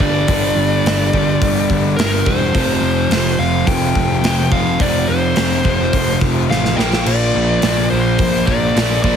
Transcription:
Already playing: G2 D3 G3
0.00 G1 G2 D3 G3 D5, kick
0.28 G1 G2 D3 G3, kick, open hi-hat
0.56 G1
0.85 G1, snare, open hi-hat
1.13 G1 G2 D3 G3, kick
1.42 G1, kick, open hi-hat
1.70 G1, kick
1.96 G1 G2 D3 A#4, snare, open hi-hat
2.01 G3
2.25 E1 G2 D3 G3 C5, kick
2.54 F1 F2 C3, kick, open hi-hat
2.58 F3
2.81 F1
3.10 F1, snare, open hi-hat
3.38 F1 C3 F3 F5
3.43 F2
3.67 F1 G5, kick, open hi-hat
3.95 F1, kick
4.22 F1 F2 C3 F3, snare, open hi-hat
4.51 F1 F2 C3 F3 F5, kick
4.79 F1 F2 C3 F3 D5, kick, open hi-hat
5.09 F1 C5
5.36 F1, snare, open hi-hat
5.63 F1 C3 F3, kick
5.68 F2
5.93 F1, kick, open hi-hat
6.21 F1, kick
6.48 A1 F2 C3 F3 F5, snare
6.65 snare
6.76 A#1 A#2 F3 G5, snare
6.80 A#3
6.93 snare
7.06 A#1 D5, crash
7.35 A#1
7.62 A#1 A#2 F3 A#3, snare, open hi-hat
7.90 A#1 C5
8.19 A#1, kick, open hi-hat
8.46 A#1 A#2 F3 A#3 D5, kick
8.75 A#1 A#2 F3 A#3, snare, open hi-hat
9.02 A#1 A#2 F3 A#3 D5, kick

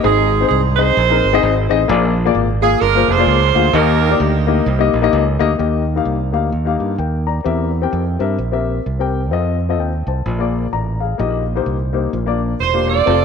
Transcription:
0.03 G#1 G#2 C4 D#4 G#4 D#5
0.40 C4 D#4 G#4 C5
0.48 C2 G#4
0.76 C4 D#4 G#4 C5 D#5
0.97 A#1
1.10 C4 D#4 G#4 A#4
1.24 G#1
1.33 C4 D#4 G#4 D#5
1.43 G#1
1.69 A1 C4 D#4 G#4 D#5
1.88 A#1 A#2 A#3 F4 G#4 D5
2.25 A#3 F4 G#4 D5
2.35 G#1
2.62 A#3 F4 G#4 F5
2.81 G1 D4 F4 A#4
2.95 A#3 F4 G#4 C5
3.08 F1 F4 G#4 C5
3.18 A#3 F4 G#4 D5
3.27 C#2
3.55 D2 A#3 F4 G#4 F5
3.73 D#2 D#3 A#3 D#4 G4 A#4 D#5
4.09 A#3 D#4 G4 D5
4.20 D2 G3 A#3 D#4
4.47 A#3 D#4 G4 D#5
4.66 C2
4.79 A#3 D#4 G4 D#5
4.93 A#1
5.02 A#3 D#4 G4 D#5
5.13 C#2
5.39 D2 A#3 D#4 G4 D#5
5.58 D#2 D#3 A#3 D#4 G4 D#5
5.96 A#3 D#4 G4 F5
6.05 C2
6.32 D2 A#3 D#4 G4 F5
6.52 D#2
6.65 A#3 D#4 G4 F5
6.80 G2
6.98 D#2 A#4 G5
7.27 D5 A#5
7.44 E2 E3 C4 G4 A#4 E5
7.82 C4 G4 A#4 G5
7.93 F2
8.19 G2 C4 G4 A#4 E5
8.38 A#1
8.52 C4 G4 A#4 E5
8.86 C2
8.99 C4 G4 A#4 G5
9.31 F2 C4 F4 A4 D#5
9.69 C4 F4 A4 D#5
9.79 D#2 G5
10.07 C2 C5 A5
10.26 A#1 A#2
10.39 A#3 F4 G#4 D5
10.73 A1 D5 A#5
11.00 G#4 F5
11.18 A#1 A#2 A#3 D#4 G4 D#5
11.55 A#3 D#4 G4 C5
11.66 C2
11.93 A#3 D#4 G4 C5
12.13 A#1 A#2
12.26 A#3 D4 F4 D5
12.60 E1 C5
12.74 A#3 D4 F4 G4
12.88 F4 A4 D5
13.06 F1 C4 F4 A4

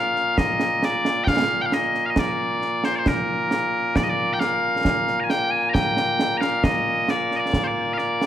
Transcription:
Already playing: A#2 A#3 F5
0.16 snare
0.38 D#5, concert bass drum, snare
0.60 snare
0.83 D5, snare
1.05 snare
1.24 F5 G5, concert bass drum, snare
1.61 G5
1.66 F5
1.72 D#5, snare
1.95 snare
2.06 F5
2.10 D#5
2.16 D5, concert bass drum, snare
2.62 snare
2.84 C5, snare
2.95 C5 D5
3.06 A#4, concert bass drum, snare
3.51 snare
3.96 D5, concert bass drum, snare
4.03 D#5
4.09 D5
4.33 G5
4.40 F5, snare
4.85 concert bass drum, snare
5.07 snare
5.20 G#5 A#5
5.30 G5, snare
5.51 G#5
5.70 A#5
5.74 G5, concert bass drum, snare
5.97 snare
6.19 snare
6.37 F5 A#5
6.41 snare
6.64 D#5, concert bass drum, snare
7.08 D5, snare
7.31 snare
7.36 D5 D#5
7.53 concert bass drum, snare
7.64 C5 D5
7.93 F5
7.98 D5, snare
8.22 snare

